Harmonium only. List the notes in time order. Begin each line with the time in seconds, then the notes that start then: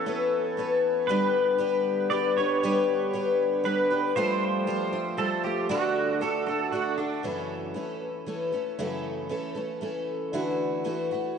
Already playing: E3 B3 A4 C#5
1.08 D3 G4 B4
4.15 F3 A3 C5
5.69 D3 F#4 D5